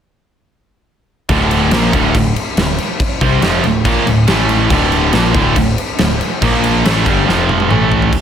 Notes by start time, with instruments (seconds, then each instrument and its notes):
1.29 picked electric bass D1, overdriven electric guitar D2 A2 D3, kick, crash
1.51 crash
1.71 picked electric bass A#1, overdriven electric guitar A#2 F3 A#3, snare, crash
1.93 picked electric bass D1, overdriven electric guitar D2 A2 D3, kick, crash
2.14 picked electric bass D1, overdriven electric guitar D2 A2, kick, crash
2.36 crash
2.57 picked electric bass D1, overdriven electric guitar D2 A2, snare, crash
2.78 crash
3.00 kick, crash
3.21 picked electric bass C2, overdriven electric guitar C3 G3 C4, kick, crash
3.42 picked electric bass F1, overdriven electric guitar F2 C3 F3, snare, crash
3.64 picked electric bass D1, overdriven electric guitar D2 A2, crash
3.84 picked electric bass A#1, overdriven electric guitar A#2 F3 A#3, kick, crash
4.07 picked electric bass D1, overdriven electric guitar D2 A2, crash
4.27 picked electric bass A1, overdriven electric guitar A2 E3 A3, snare, crash
4.49 crash
4.70 picked electric bass D1, overdriven electric guitar D2 A2 D3, kick, crash
4.92 crash
5.12 picked electric bass A#1, overdriven electric guitar A#2 F3 A#3, snare, crash
5.34 picked electric bass D1, overdriven electric guitar D2 A2 D3, kick, crash
5.56 picked electric bass D1, overdriven electric guitar D2 A2, kick, crash
5.78 crash
5.98 picked electric bass D1, overdriven electric guitar D2 A2, snare, crash
6.21 crash
6.41 picked electric bass A#1, overdriven electric guitar A#2 F3 A#3, kick, crash
6.64 crash
6.85 picked electric bass A1, overdriven electric guitar A2 E3 A3, snare, crash
7.06 picked electric bass G1, overdriven electric guitar G2 D3 G3, kick, crash
7.28 picked electric bass F1, overdriven electric guitar F2 C3 F3, snare
7.49 high tom
7.60 high tom
7.69 picked electric bass A1, overdriven electric guitar A2 E3 A3, mid tom
7.92 floor tom
8.02 floor tom
8.13 picked electric bass D1, kick, crash